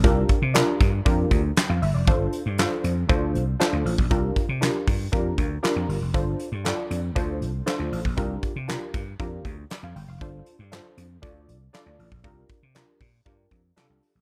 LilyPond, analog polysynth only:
\new Staff \with { instrumentName = "Analog polysynth" } { \time 4/4 \key c \dorian \tempo 4 = 118 << { r2. g''16 f''16 e''16 d''16~ | d''16 r2. r8. | r1 | r1 |
r2. d''16 f''16 g''16 f''16~ | f''16 r2. r8. | r1 | } \\ { <d' f' g' bes'>8 r8 <d' f' g' bes'>8 r8 <d' f' g' bes'>8 r4. | <d' f' a' c''>8 r8 <d' f' a' c''>8 r8 <d' f' a' c''>8 r8 <d' f' a' c''>8 r8 | <d' f' g' bes'>8 r8 <d' f' g' bes'>8 r8 <d' f' g' bes'>8 r8 <d' f' g' bes'>8 r8 | <d' f' a' c''>8 r8 <d' f' a' d''>8 r8 <d' f' a' c''>8 r8 <d' f' a' c''>8 r8 |
<d' f' g' bes'>8 r8 <d' f' g' bes'>8 r8 <d' f' g' bes'>8 r4. | <d' f' a' c''>8 r8 <d' f' a' c''>8 r8 <d' f' a' d''>8 r8 <d' f' a' d''>8 r8 | <d' f' g' bes'>8 r8 <d' f' g' bes'>8 r8 <d' f' g' bes'>8 r8 <d' f' g' a'>8 r8 | } >> }